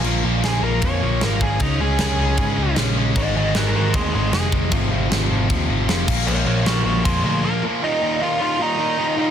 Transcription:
<<
  \new Staff \with { instrumentName = "Lead electric guitar" } { \time 4/4 \key bes \mixolydian \tempo 4 = 154 r4 aes'8 bes'8 des''4 bes'8 aes'8 | ees'8 aes'8 aes'2 r4 | <c'' ees''>8 <c'' ees''>8 <ges' bes'>8 <ges' bes'>8 <c' aes'>8 <c' aes'>8 aes'8 r8 | r1 |
<bes' des''>8 <bes' des''>8 <ges' bes'>8 <ges' bes'>8 <f' aes'>8 <f' aes'>8 bes'8 r8 | <ees' ees''>4 <f' f''>8 <f' f''>8 <ees' ees''>2 | }
  \new Staff \with { instrumentName = "Distorted electric guitar" } { \clef bass \time 4/4 \key bes \mixolydian <bes, f bes>2.~ <bes, f bes>8 r8 | <des aes des'>1 | <aes, ees aes>1 | <f, c f>2.~ <f, c f>8 <bes, f bes>8~ |
<bes, f bes>2.~ <bes, f bes>8 r8 | r1 | }
  \new Staff \with { instrumentName = "Distorted electric guitar" } { \clef bass \time 4/4 \key bes \mixolydian <bes, f bes>8 <bes, f bes>8 <bes, f bes>8 <bes, f bes>8 <bes, f bes>8 <bes, f bes>8 <bes, f bes>8 <bes, f bes>8 | <des aes des'>8 <des aes des'>8 <des aes des'>8 <des aes des'>8 <des aes des'>8 <des aes des'>8 <des aes des'>8 <des aes des'>8 | <aes, ees aes>8 <aes, ees aes>8 <aes, ees aes>8 <aes, ees aes>8 <aes, ees aes>8 <aes, ees aes>8 <aes, ees aes>8 <aes, ees aes>8 | <f, c f>8 <f, c f>8 <f, c f>8 <f, c f>8 <f, c f>8 <f, c f>8 <f, c f>8 <bes, f bes>8 |
<bes, f bes>8 <bes, f bes>8 <bes, f bes>8 <bes, f bes>8 <bes, f bes>8 <bes, f bes>8 <bes, f bes>8 <bes, f bes>8 | <ees, bes, ees>8 <ees, bes, ees>8 <ees, bes, ees>8 <ees, bes, ees>8 <ees, bes, ees>8 <ees, bes, ees>8 <ees, bes, ees>8 <ees, bes, ees>8 | }
  \new Staff \with { instrumentName = "Picked electric bass" } { \clef bass \time 4/4 \key bes \mixolydian bes,,8 bes,,8 bes,,8 bes,,8 f,8 bes,,8 aes,,4 | des,8 des,8 des,8 des,8 aes,8 des,8 bes,,4 | aes,,8 aes,,8 aes,,8 aes,,8 ees,8 aes,,8 f,,4 | aes,,8 aes,,8 aes,,8 aes,,8 ees,8 aes,,8 f,,8 bes,,8 |
bes,,8 bes,,8 bes,,8 bes,,8 f,8 d,8 r4 | r1 | }
  \new DrumStaff \with { instrumentName = "Drums" } \drummode { \time 4/4 cymc4 <cymc sn>4 <cymc bd>4 <cymc sn>8 bd8 | <cymc bd>4 <cymc sn>4 <cymc bd>4 <cymc sn>4 | <cymc bd>4 <cymc sn>4 <cymc bd>4 <cymc sn>8 bd8 | <cymc bd>4 <cymc sn>4 <cymc bd>4 <cymc sn>8 <cymc bd>8 |
cymc4 <cymc sn>4 <cymc bd>4 r4 | r4 r4 r4 r4 | }
>>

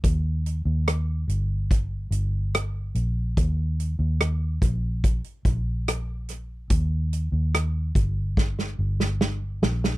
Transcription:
<<
  \new Staff \with { instrumentName = "Fingered electric bass" } { \clef bass \time 4/4 \key ees \major \tempo 4 = 72 ees,8. ees,8. g,,4 g,,4 bes,,8 | ees,8. ees,8. bes,,8. r16 bes,,4. | ees,8. ees,8. g,,4 g,,4 bes,,8 | }
  \new DrumStaff \with { instrumentName = "Drums" } \drummode { \time 4/4 <hh bd>8 hh8 <hh ss>8 hh8 <hh bd>8 hh8 <hh ss>8 hh8 | <hh bd>8 hh8 <hh ss>8 <hh bd>8 <hh bd>16 hh16 <hh bd>8 <hh ss>8 <hh ss>8 | <hh bd>8 hh8 <hh ss>8 <hh bd>8 <bd sn>16 sn8 sn16 sn8 sn16 sn16 | }
>>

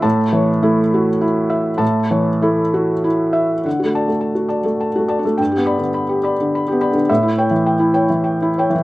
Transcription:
<<
  \new Staff \with { instrumentName = "Felt piano" } { \time 3/4 \key d \major \tempo 4 = 102 <e'' a''>8 cis''8 e'8 fis'8 e'8 e''8 | a''8 cis''8 e'8 fis'8 e'8 e''8 | fis''16 fis'16 <d'' a''>16 a16 a''16 fis'16 <d'' a''>16 a16 a''16 fis'16 <d'' a''>16 a16 | g''16 g'16 <d'' b''>16 d16 b''16 g'16 <d'' b''>16 d16 b''16 g'16 <d'' b''>16 d16 |
e''16 e'16 <cis'' g''>16 e16 g''16 e'16 <cis'' g''>16 e16 g''16 e'16 <cis'' g''>16 e16 | }
  \new Staff \with { instrumentName = "Felt piano" } { \clef bass \time 3/4 \key d \major a,8 e8 a4 r4 | a,8 e8 a4 r4 | \tuplet 3/2 { d8 a4 } r4 \tuplet 3/2 { r8 a8 d'8 } | \tuplet 3/2 { g,8 b4 } r4 \tuplet 3/2 { r8 b8 d8 } |
a,2~ \tuplet 3/2 { a,4 e8 } | }
>>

